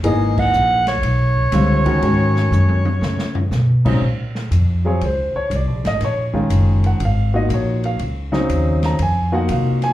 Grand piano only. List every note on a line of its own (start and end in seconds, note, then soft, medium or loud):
0.03 0.80 E3 medium
0.03 0.81 A#3 medium
0.03 0.81 D#4 medium
0.03 0.81 G#4 medium
1.53 1.83 D3 medium
1.53 1.83 G3 medium
1.53 1.83 C4 medium
1.53 1.84 F4 medium
1.86 2.01 D#3 medium
1.86 2.01 G#3 medium
1.86 2.02 C#4 medium
1.86 2.01 F#4 medium
2.02 2.79 D#3 medium
2.02 2.79 G#3 medium
2.02 2.79 C#4 medium
2.02 2.79 F#4 medium
3.85 4.00 G#2 medium
3.85 4.00 C#3 medium
3.85 4.00 F#3 medium
3.85 4.00 C4 medium
3.85 4.00 D#4 medium
4.85 4.99 F#3 medium
4.85 5.00 C4 medium
4.85 5.00 F4 medium
4.85 5.00 G#4 medium
4.85 5.02 C#5 medium
5.05 5.36 C5 medium
5.36 5.51 C#5 medium
5.56 5.86 D5 medium
5.87 6.02 D#5 loud
6.05 6.23 C#5 medium
6.33 6.96 D#3 medium
6.33 6.96 G#3 medium
6.33 6.97 C#4 medium
6.33 6.97 F4 medium
6.86 7.01 F#5 medium
7.05 7.35 F5 medium
7.34 7.96 A#3 medium
7.34 7.96 D#4 medium
7.34 7.96 F4 medium
7.34 7.96 F#4 medium
7.34 7.50 D#5 medium
7.54 7.84 C#5 medium
7.86 8.00 F5 medium
8.32 8.95 C#3 medium
8.32 8.95 F#3 medium
8.32 8.95 C4 medium
8.32 8.95 D#4 medium
8.85 9.00 A#5 medium
9.02 9.33 G#5 medium
9.32 9.93 A#3 medium
9.32 9.93 D#4 medium
9.32 9.93 F4 medium
9.32 9.93 F#4 medium
9.32 9.49 F#5 medium
9.52 9.83 F5 medium
9.84 9.93 G#5 loud